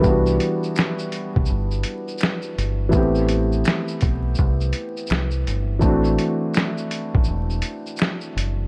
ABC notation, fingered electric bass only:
X:1
M:4/4
L:1/16
Q:"Swing 16ths" 1/4=83
K:Ador
V:1 name="Fingered electric bass" clef=bass
C,,2 z4 z C,, G,,,2 z4 G,,,2 | A,,,4 z2 B,,,2 C,,2 z2 C,,2 G,,,2 | A,,,2 z4 z A,,, E,,,2 z4 F,,,2 |]